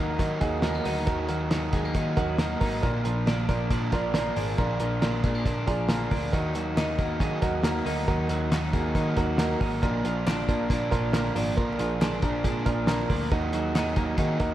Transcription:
Already playing: D#2 D#3 F#3 A#3 D#4 F#4 A#4
0.00 F#3
0.19 D#3 F#3 A#3 D#4 F#4 A#4, kick, closed hi-hat
0.41 D#2 F#3 A#3 D#4 F#4 G#4, kick, snare, closed hi-hat
0.62 D#3 F#3 G#3 A#3 D#4 F#4 A#4, snare, closed hi-hat
0.75 A#3
0.84 D2 F#3 A#3 D#4 F#4 A#4, open hi-hat
1.06 D#2 D#3 F#3 A#3 D#4 F#4 A#4, kick, closed hi-hat
1.28 D#2 F#3 A#3 D#4 F#4 A#4, closed hi-hat
1.51 D#3 F#3 A#3 D#4 F#4 A#4, snare, closed hi-hat
1.73 F#3 G#3 A#3 D#4 F#4 G#4, kick, closed hi-hat
1.85 A#3
1.94 D#3 F#3 A#3 D#4 F#4 A#4, kick, closed hi-hat
2.16 D#2 F#3 A#3 D#4 F#4 A#4, kick, snare, closed hi-hat
2.38 D#3 F#3 A#3 D#4 F#4 A#4, snare, closed hi-hat
2.60 G#1 F#3 A#3 D#4 F#4 A#4, kick, open hi-hat
2.82 A#1 A#2 D3 F3 A#3 D4 F4 A#4, kick, closed hi-hat
3.04 A#1 F3 A#3 D4 F4 A#4, closed hi-hat
3.26 D3 F3 A#3 D4 F4 A#4, snare, closed hi-hat
3.48 F3 A#3 D4 F4 A#4, kick, closed hi-hat
3.71 A#2 D3 F3 A#3 D4 F4 A#4, kick, closed hi-hat
3.92 A#1 F3 A#3 D4 F4 A#4, kick, snare, closed hi-hat
4.14 D3 F3 A#3 D4 F4 A#4, snare, closed hi-hat
4.36 G#1 F3 A#3 D4 F4 G#4, open hi-hat
4.58 A#1 A#2 D3 F3 A#3 D4 F4 A#4, kick, closed hi-hat
4.79 A#1 F3 A#3 D4 F4 A#4, closed hi-hat
5.01 D3 F3 A#3 D4 F4 A#4, snare, closed hi-hat
5.23 F3 G#3 A#3 D4 F4 A#4, kick, closed hi-hat
5.35 A#3
5.45 A#2 D3 F3 A#3 D4 F4 A#4, kick, closed hi-hat
5.67 A#1 F3 A#3 D4 F4 G#4 A#5, kick, snare, closed hi-hat
5.89 D3 F3 A#3 D4 F4 A#4 F5, snare, closed hi-hat
6.11 D2 F3 A#3 D4 F4 A#4, kick, open hi-hat
6.32 D#2 D#3 F#3 A#3 D#4 F#4 A#4, kick, closed hi-hat
6.54 D#2 F#3 A#3 D#4 F#4 A#4, closed hi-hat
6.75 D#3 F#3 A#3 D#4 F#4 A#4, snare, clap, closed hi-hat
6.97 F#3 A#3 D#4 F#4 A#4, kick, closed hi-hat
7.19 D#3 F#3 A#3 D#4 F#4 G#4, kick, closed hi-hat
7.41 D#2 F#3 A#3 D#4 F#4 A#4, kick, snare, closed hi-hat
7.63 D#3 F#3 A#3 D#4 F#4 A#4, snare, clap, closed hi-hat
7.84 D2 F#3 A#3 D#4 F#4 A#4, open hi-hat
8.07 D#2 D#3 F#3 A#3 D#4 F#4 A#4, kick, closed hi-hat
8.28 D#2 F#3 A#3 D#4 F#4 A#4, closed hi-hat
8.50 D#3 F#3 A#3 D#4 F#4 A#4, snare, clap, closed hi-hat
8.72 F#3 A#3 D#4 F#4 G#4, kick, closed hi-hat
8.95 D#3 F#3 A#3 D#4 F#4 A#4, kick, closed hi-hat
9.16 D#2 F#3 A#3 D#4 F#4 A#4, kick, snare, closed hi-hat
9.38 D#3 F#3 A#3 D#4 F#4 A#4, snare, clap, closed hi-hat
9.60 G#1 F#3 A#3 D#4 F#4 A#4, kick, open hi-hat
9.82 A#1 A#2 D3 F3 A#3 D4 F4 A#4, kick, closed hi-hat
10.04 A#1 F3 A#3 D4 F4 A#4, closed hi-hat
10.26 D3 F3 A#3 D4 F4 A#4, snare, clap, closed hi-hat
10.48 F3 A#3 D4 F4 A#4, kick, closed hi-hat
10.70 A#2 D3 F3 A#3 D4 F4 A#4, kick, closed hi-hat
10.91 A#1 F3 A#3 D4 F4 A#4, kick, snare, closed hi-hat
11.13 D3 F3 A#3 D4 F4 A#4, snare, clap, closed hi-hat
11.17 D4
11.35 G#1 F3 A#3 D4 F4 A#4, open hi-hat
11.57 A#1 A#2 D3 F3 A#3 D4 F4 A#4, kick, closed hi-hat
11.79 A#1 F3 A#3 D4 F4 G#4, closed hi-hat
12.00 D3 F3 A#3 D4 F4 G#4, snare, clap, closed hi-hat
12.22 F3 A#3 D4 F4 A#4, kick, closed hi-hat
12.44 A#2 D3 F3 A#3 D4 F4 G#4, kick, closed hi-hat
12.66 A#1 F3 A#3 D4 F4 A#4, kick, closed hi-hat
12.87 D3 F3 A#3 D4 F4 A#4, snare, clap, closed hi-hat
13.09 D2 F3 A#3 D4 F4 A#4, kick, open hi-hat
13.30 D#2 D#3 F#3 A#3 D#4 F#4 A#4, kick, closed hi-hat
13.53 D#2 F#3 A#3 D#4 F#4 G#4, closed hi-hat
13.75 D#3 F#3 A#3 D#4 F#4 G#4, snare, clap, closed hi-hat
13.96 F#3 A#3 D#4 F#4 A#4, kick, closed hi-hat
14.17 D#3 F#3 A#3 D#4 F#4 G#4, kick, closed hi-hat
14.39 D#2 F#3 A#3 D#4 F#4 A#4, kick, snare, closed hi-hat

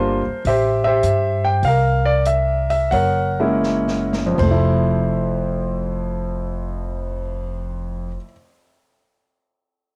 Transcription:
Already playing: G1 G3 A#3 D4 F4 A#4 C5
0.27 muted upright bass stroke
0.45 A1 G4 C5 E5, kick, open hi-hat
0.84 G4 C5 E5
1.03 G2, closed hi-hat
1.45 G5
1.63 C2 F5, kick, open hi-hat
1.67 A#4
2.05 D5
2.25 E5, closed hi-hat
2.70 E5, open hi-hat
2.91 F#1 A#4 C#5 F#5, kick, open hi-hat
3.40 G#3 A#3 C#4 E4
3.63 snare
3.88 snare
4.13 snare
4.26 F2
4.35 F1 F3 C5, kick
4.39 A3, crash
4.51 E4
4.92 cymbal swell

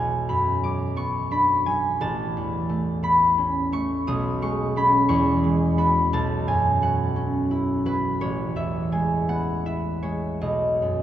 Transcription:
Already playing: B1 F#3 G#3 F#5 G#5
0.29 F#2 B5
0.64 F#3 D6
0.96 B3 C#6
1.31 D4 B5
1.66 F#3 G#5
2.01 A1 A5
2.37 E2
2.69 A3
3.03 B3 B5
3.38 C#4
3.72 A3 C#6
4.07 B1 D#6
4.42 G#3 C#6
4.76 B3 C#4 B5
5.09 E2 C#6
5.44 G#3
5.77 B3 F#4 B5
6.13 B1 A5
6.48 F#2 G#5
6.82 F#3 F#5
7.16 C#4
7.51 E4
7.86 F#3 B4
8.21 A1 C#5
8.56 E2 E5
8.92 G#3 G#5
9.28 B3 F#5
9.66 E4 E5
10.03 G#3 C#5
10.41 B1 D#5
10.82 F#2

